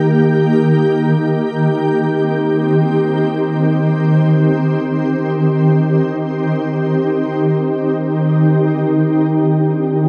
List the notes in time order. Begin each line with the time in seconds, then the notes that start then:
Already playing: D#3 A#3 G4 A#4
1.26 C4
8.91 D4
9.35 F4